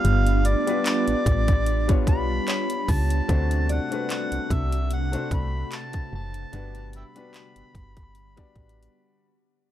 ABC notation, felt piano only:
X:1
M:4/4
L:1/16
Q:"Swing 16ths" 1/4=74
K:Glyd
V:1 name="Felt piano"
[G,B,D=FB]3 [G,B,DFB]4- [G,B,DFB] z [G,B,DFc]6 z | [=C,A,DF=c]3 [A,=CDFB]4- [A,CDFB] z [A,CDFc]6 z | [G,B,DFB]3 [G,B,DFB]4- [G,B,DFB] z [G,B,DFd]6 z |]